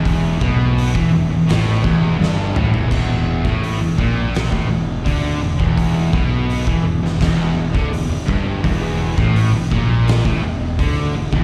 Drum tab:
CC |----------------|x---------------|----------------|----------------|
HH |o---o---o-------|----o---o---o---|o---o---o---o---|o---o---o---o---|
SD |--------o---o---|--------o-------|-------oo-------|--------o-------|
T2 |--------------o-|----------------|----------------|----------------|
FT |---------------o|----------------|----------------|----------------|
BD |o-o--o----o-----|o--o--o--o--o--o|o-o--o--o--o--o-|o--o--o--o--o--o|